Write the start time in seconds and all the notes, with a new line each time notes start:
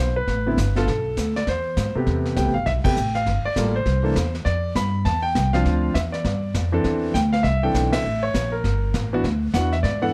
Already playing: B1 C5
0.16 B4
0.27 A1, brush sweep, kick, snare
0.46 D3 B3 C4 E4
0.57 G1, kick, snare, hi-hat pedal
0.75 D3 A3 B3 F4 A4, snare
0.87 B1, brush sweep, kick, snare
1.17 D2, kick, snare, hi-hat pedal
1.36 D5, snare
1.47 E2 C5, brush sweep, kick, snare
1.77 G#2, kick, snare, hi-hat pedal
1.95 C3 A3 B3 G4, muted upright bass stroke
2.07 E2, brush sweep, kick, snare
2.25 snare
2.36 C2 C3 A3 B3 G4 G5, kick, snare, hi-hat pedal
2.46 A1
2.54 G1 F5
2.66 B1 E5, brush sweep, kick, snare
2.84 C3 A3 B3 G4 G5, kick, ride
2.97 A1, hi-hat pedal
3.15 F5, snare
3.26 G1, brush sweep, kick, snare
3.45 D5, muted upright bass stroke
3.56 A1 G3 A#3 F4 A4, kick, snare, hi-hat pedal
3.76 C5
3.86 C2, brush sweep, kick, snare
4.03 E3 A#3 D4 A4
4.16 E2, kick, snare, hi-hat pedal
4.35 snare
4.45 F2 D5, brush sweep, kick, snare
4.75 G2 B5, kick, snare, hi-hat pedal
5.05 E2 A5, brush sweep, kick, snare
5.22 G5
5.35 C2, kick, snare, hi-hat pedal
5.53 F3 C4 D4 F4 F5, snare
5.65 D2, brush sweep, kick, snare
5.94 E2 E5, kick, snare, hi-hat pedal
6.12 D5, snare
6.24 G2, brush sweep, kick, snare
6.54 F2, kick, snare, hi-hat pedal
6.72 E3 C4 D4 A4
6.84 E2, brush sweep, kick, snare
7.14 D2 G5, kick, snare, hi-hat pedal
7.33 F5, snare
7.43 C2 E5, brush sweep, kick, snare
7.63 E3 C4 D4 A4 G5
7.74 B1, kick, snare, hi-hat pedal
7.93 E5, snare, ride
8.04 A1, brush sweep
8.23 C#5
8.34 A#1, kick, snare, hi-hat pedal
8.52 A#4
8.64 G1, brush sweep, kick, snare
8.94 A1, kick, snare, hi-hat pedal
9.13 E3 B3 D4 F#4
9.24 D2, brush sweep, kick, snare
9.54 E2 E3 B3 D4 F#4 F#5, kick, snare, hi-hat pedal
9.73 E5, snare
9.83 G#2 D5, brush sweep, kick, snare
10.02 E3 B3 D4 A4 F#5